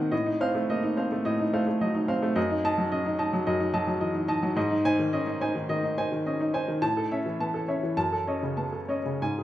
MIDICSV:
0, 0, Header, 1, 2, 480
1, 0, Start_track
1, 0, Tempo, 562852
1, 100, Time_signature, 4, 2, 24, 8
1, 2018, Tempo, 548948
1, 3938, Tempo, 564972
1, 6338, Tempo, 587659
1, 7298, Tempo, 643087
1, 7948, End_track
2, 0, Start_track
2, 0, Title_t, "Upright piano"
2, 0, Program_c, 0, 0
2, 0, Control_c, 0, 64, 127
2, 0, Note_on_c, 0, 51, 55
2, 0, Note_on_c, 0, 58, 43
2, 0, Note_on_c, 0, 60, 59
2, 0, Note_on_c, 0, 63, 54
2, 0, Note_on_c, 0, 72, 54
2, 0, Note_on_c, 0, 75, 58
2, 0, Note_on_c, 0, 78, 60
2, 98, Note_off_c, 0, 75, 0
2, 98, Note_on_c, 0, 75, 63
2, 99, Note_off_c, 0, 60, 0
2, 100, Note_off_c, 0, 51, 0
2, 101, Note_on_c, 0, 45, 69
2, 116, Control_c, 0, 64, 0
2, 117, Note_off_c, 0, 72, 0
2, 119, Note_off_c, 0, 58, 0
2, 120, Note_off_c, 0, 78, 0
2, 125, Note_off_c, 0, 63, 0
2, 223, Note_on_c, 0, 63, 56
2, 243, Control_c, 0, 64, 127
2, 293, Note_off_c, 0, 75, 0
2, 346, Note_on_c, 0, 72, 55
2, 348, Note_on_c, 0, 60, 55
2, 350, Note_on_c, 0, 77, 80
2, 417, Note_off_c, 0, 63, 0
2, 454, Note_off_c, 0, 72, 0
2, 456, Note_off_c, 0, 77, 0
2, 468, Note_on_c, 0, 57, 58
2, 594, Note_on_c, 0, 58, 49
2, 595, Note_on_c, 0, 75, 63
2, 661, Note_off_c, 0, 57, 0
2, 709, Note_on_c, 0, 63, 55
2, 734, Note_off_c, 0, 60, 0
2, 784, Note_off_c, 0, 75, 0
2, 827, Note_on_c, 0, 72, 54
2, 828, Note_on_c, 0, 60, 53
2, 832, Note_off_c, 0, 58, 0
2, 832, Note_on_c, 0, 77, 60
2, 901, Note_off_c, 0, 63, 0
2, 936, Note_off_c, 0, 72, 0
2, 938, Note_off_c, 0, 77, 0
2, 953, Note_on_c, 0, 57, 54
2, 1040, Note_off_c, 0, 45, 0
2, 1067, Note_on_c, 0, 75, 68
2, 1068, Note_on_c, 0, 45, 67
2, 1142, Note_off_c, 0, 57, 0
2, 1190, Note_on_c, 0, 63, 54
2, 1211, Note_off_c, 0, 60, 0
2, 1258, Note_off_c, 0, 75, 0
2, 1308, Note_on_c, 0, 57, 61
2, 1309, Note_on_c, 0, 72, 54
2, 1310, Note_on_c, 0, 77, 61
2, 1378, Note_off_c, 0, 63, 0
2, 1413, Note_off_c, 0, 57, 0
2, 1414, Note_off_c, 0, 72, 0
2, 1415, Note_off_c, 0, 77, 0
2, 1425, Note_on_c, 0, 57, 52
2, 1545, Note_on_c, 0, 54, 46
2, 1546, Note_on_c, 0, 75, 58
2, 1614, Note_off_c, 0, 57, 0
2, 1661, Note_on_c, 0, 63, 58
2, 1734, Note_off_c, 0, 75, 0
2, 1777, Note_on_c, 0, 60, 57
2, 1777, Note_on_c, 0, 72, 57
2, 1777, Note_on_c, 0, 77, 64
2, 1782, Note_off_c, 0, 54, 0
2, 1852, Note_off_c, 0, 63, 0
2, 1886, Note_off_c, 0, 72, 0
2, 1886, Note_off_c, 0, 77, 0
2, 1896, Note_on_c, 0, 57, 60
2, 1989, Note_off_c, 0, 45, 0
2, 2009, Note_on_c, 0, 75, 71
2, 2010, Note_on_c, 0, 42, 69
2, 2016, Note_off_c, 0, 57, 0
2, 2016, Note_off_c, 0, 60, 0
2, 2033, Control_c, 0, 64, 0
2, 2138, Note_on_c, 0, 63, 59
2, 2173, Control_c, 0, 64, 127
2, 2206, Note_off_c, 0, 75, 0
2, 2248, Note_off_c, 0, 63, 0
2, 2261, Note_on_c, 0, 63, 57
2, 2262, Note_on_c, 0, 75, 57
2, 2265, Note_on_c, 0, 81, 84
2, 2369, Note_off_c, 0, 75, 0
2, 2370, Note_off_c, 0, 81, 0
2, 2378, Note_on_c, 0, 54, 57
2, 2499, Note_on_c, 0, 75, 65
2, 2500, Note_on_c, 0, 61, 48
2, 2571, Note_off_c, 0, 54, 0
2, 2610, Note_off_c, 0, 63, 0
2, 2623, Note_on_c, 0, 63, 60
2, 2691, Note_off_c, 0, 75, 0
2, 2723, Note_off_c, 0, 63, 0
2, 2735, Note_on_c, 0, 75, 57
2, 2736, Note_on_c, 0, 63, 55
2, 2739, Note_off_c, 0, 61, 0
2, 2739, Note_on_c, 0, 81, 60
2, 2844, Note_off_c, 0, 75, 0
2, 2846, Note_off_c, 0, 81, 0
2, 2861, Note_on_c, 0, 54, 61
2, 2945, Note_off_c, 0, 42, 0
2, 2980, Note_on_c, 0, 75, 74
2, 2982, Note_on_c, 0, 42, 67
2, 3051, Note_off_c, 0, 54, 0
2, 3086, Note_off_c, 0, 63, 0
2, 3099, Note_on_c, 0, 63, 58
2, 3171, Note_off_c, 0, 75, 0
2, 3214, Note_on_c, 0, 75, 60
2, 3216, Note_on_c, 0, 54, 63
2, 3217, Note_on_c, 0, 81, 69
2, 3290, Note_off_c, 0, 63, 0
2, 3321, Note_off_c, 0, 54, 0
2, 3323, Note_off_c, 0, 75, 0
2, 3324, Note_off_c, 0, 81, 0
2, 3334, Note_on_c, 0, 54, 59
2, 3453, Note_on_c, 0, 75, 62
2, 3457, Note_on_c, 0, 52, 44
2, 3525, Note_off_c, 0, 54, 0
2, 3574, Note_on_c, 0, 63, 54
2, 3644, Note_off_c, 0, 75, 0
2, 3682, Note_off_c, 0, 63, 0
2, 3693, Note_on_c, 0, 75, 62
2, 3694, Note_off_c, 0, 52, 0
2, 3695, Note_on_c, 0, 63, 58
2, 3696, Note_on_c, 0, 81, 67
2, 3802, Note_off_c, 0, 75, 0
2, 3804, Note_off_c, 0, 81, 0
2, 3819, Note_on_c, 0, 54, 60
2, 3912, Note_off_c, 0, 42, 0
2, 3939, Note_off_c, 0, 63, 0
2, 3939, Note_on_c, 0, 44, 76
2, 3940, Note_off_c, 0, 54, 0
2, 3942, Note_on_c, 0, 75, 71
2, 3953, Control_c, 0, 64, 0
2, 4062, Note_on_c, 0, 63, 62
2, 4079, Control_c, 0, 64, 127
2, 4134, Note_off_c, 0, 75, 0
2, 4170, Note_off_c, 0, 63, 0
2, 4183, Note_on_c, 0, 63, 60
2, 4183, Note_on_c, 0, 72, 58
2, 4184, Note_on_c, 0, 80, 86
2, 4292, Note_off_c, 0, 72, 0
2, 4293, Note_off_c, 0, 80, 0
2, 4305, Note_on_c, 0, 51, 57
2, 4421, Note_on_c, 0, 75, 69
2, 4422, Note_on_c, 0, 61, 48
2, 4498, Note_off_c, 0, 51, 0
2, 4525, Note_off_c, 0, 63, 0
2, 4538, Note_on_c, 0, 63, 61
2, 4615, Note_off_c, 0, 75, 0
2, 4648, Note_off_c, 0, 63, 0
2, 4658, Note_on_c, 0, 72, 54
2, 4661, Note_on_c, 0, 63, 59
2, 4662, Note_on_c, 0, 80, 66
2, 4664, Note_off_c, 0, 61, 0
2, 4769, Note_off_c, 0, 72, 0
2, 4772, Note_off_c, 0, 80, 0
2, 4779, Note_on_c, 0, 51, 58
2, 4877, Note_off_c, 0, 44, 0
2, 4886, Note_off_c, 0, 51, 0
2, 4899, Note_on_c, 0, 51, 57
2, 4899, Note_on_c, 0, 75, 70
2, 5007, Note_off_c, 0, 63, 0
2, 5020, Note_on_c, 0, 63, 56
2, 5093, Note_off_c, 0, 75, 0
2, 5127, Note_off_c, 0, 63, 0
2, 5140, Note_on_c, 0, 63, 56
2, 5140, Note_on_c, 0, 72, 56
2, 5142, Note_on_c, 0, 80, 64
2, 5248, Note_off_c, 0, 72, 0
2, 5249, Note_off_c, 0, 51, 0
2, 5250, Note_off_c, 0, 80, 0
2, 5262, Note_on_c, 0, 51, 55
2, 5381, Note_on_c, 0, 61, 45
2, 5384, Note_on_c, 0, 75, 57
2, 5452, Note_off_c, 0, 51, 0
2, 5491, Note_off_c, 0, 63, 0
2, 5504, Note_on_c, 0, 63, 56
2, 5573, Note_off_c, 0, 75, 0
2, 5602, Note_off_c, 0, 63, 0
2, 5615, Note_on_c, 0, 63, 56
2, 5617, Note_on_c, 0, 72, 59
2, 5619, Note_off_c, 0, 61, 0
2, 5619, Note_on_c, 0, 80, 63
2, 5725, Note_off_c, 0, 72, 0
2, 5726, Note_off_c, 0, 80, 0
2, 5740, Note_on_c, 0, 51, 54
2, 5854, Note_on_c, 0, 45, 68
2, 5856, Note_off_c, 0, 63, 0
2, 5856, Note_on_c, 0, 81, 84
2, 5859, Note_off_c, 0, 51, 0
2, 5872, Control_c, 0, 64, 0
2, 5984, Note_on_c, 0, 69, 55
2, 6021, Control_c, 0, 64, 127
2, 6048, Note_off_c, 0, 81, 0
2, 6106, Note_on_c, 0, 61, 54
2, 6107, Note_on_c, 0, 73, 52
2, 6108, Note_on_c, 0, 76, 60
2, 6173, Note_off_c, 0, 69, 0
2, 6211, Note_off_c, 0, 73, 0
2, 6212, Note_off_c, 0, 76, 0
2, 6229, Note_on_c, 0, 52, 55
2, 6351, Note_on_c, 0, 59, 45
2, 6352, Note_on_c, 0, 81, 61
2, 6413, Note_off_c, 0, 52, 0
2, 6464, Note_on_c, 0, 69, 53
2, 6481, Note_off_c, 0, 61, 0
2, 6530, Note_off_c, 0, 81, 0
2, 6576, Note_off_c, 0, 59, 0
2, 6577, Note_on_c, 0, 61, 47
2, 6580, Note_on_c, 0, 73, 50
2, 6583, Note_on_c, 0, 76, 54
2, 6644, Note_off_c, 0, 69, 0
2, 6680, Note_off_c, 0, 73, 0
2, 6682, Note_off_c, 0, 76, 0
2, 6701, Note_on_c, 0, 52, 53
2, 6776, Note_off_c, 0, 45, 0
2, 6809, Note_off_c, 0, 61, 0
2, 6813, Note_off_c, 0, 52, 0
2, 6815, Note_on_c, 0, 42, 62
2, 6815, Note_on_c, 0, 81, 80
2, 6822, Control_c, 0, 64, 0
2, 6940, Note_on_c, 0, 69, 51
2, 6948, Control_c, 0, 64, 127
2, 7005, Note_off_c, 0, 81, 0
2, 7062, Note_on_c, 0, 73, 46
2, 7064, Note_on_c, 0, 61, 48
2, 7066, Note_on_c, 0, 75, 49
2, 7130, Note_off_c, 0, 69, 0
2, 7168, Note_off_c, 0, 73, 0
2, 7170, Note_off_c, 0, 75, 0
2, 7187, Note_on_c, 0, 49, 47
2, 7304, Note_on_c, 0, 81, 47
2, 7306, Note_on_c, 0, 59, 37
2, 7373, Note_off_c, 0, 49, 0
2, 7420, Note_on_c, 0, 69, 45
2, 7444, Note_off_c, 0, 61, 0
2, 7487, Note_off_c, 0, 81, 0
2, 7536, Note_off_c, 0, 59, 0
2, 7538, Note_on_c, 0, 73, 46
2, 7541, Note_on_c, 0, 61, 50
2, 7545, Note_on_c, 0, 75, 47
2, 7607, Note_off_c, 0, 69, 0
2, 7643, Note_off_c, 0, 73, 0
2, 7647, Note_off_c, 0, 75, 0
2, 7664, Note_on_c, 0, 49, 44
2, 7751, Note_off_c, 0, 42, 0
2, 7779, Note_off_c, 0, 61, 0
2, 7780, Note_off_c, 0, 49, 0
2, 7788, Control_c, 0, 64, 0
2, 7789, Note_on_c, 0, 44, 54
2, 7790, Note_on_c, 0, 80, 66
2, 7910, Note_on_c, 0, 68, 40
2, 7942, Control_c, 0, 64, 127
2, 7948, Note_off_c, 0, 44, 0
2, 7948, Note_off_c, 0, 68, 0
2, 7948, Note_off_c, 0, 80, 0
2, 7948, End_track
0, 0, End_of_file